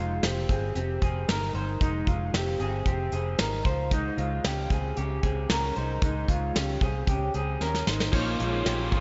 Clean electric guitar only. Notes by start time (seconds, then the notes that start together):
Already playing: G#3 F4
0.24 C4 G4
0.50 C4 G#4
0.76 C4 G4
1.02 C4 G#4
1.28 D#4 A#4
1.55 D#4 C5
1.81 G#3 D#4
2.07 G#3 F4
2.34 C4 G4
2.60 C4 G#4
2.86 C4 G4
3.12 C4 G#4
3.39 D#4 A#4
3.65 F4 C5
3.92 G#3 D#4
4.18 G#3 F4
4.44 C#4 G4
4.71 C4 G#4
4.97 C#4 G4
5.23 C4 G#4
5.50 C#4 A#4
5.76 D#4 C5
6.02 G#3 D#4
6.29 G#3 F4
6.55 C#4 G4
6.82 C4 G#4
7.08 C#4 G4
7.35 C4 G#4
7.61 C#4 A#4
7.88 D#4 C5
8.14 A#3 D#4
8.40 G#3 F4
8.66 A#3 G4
8.92 C4 G#4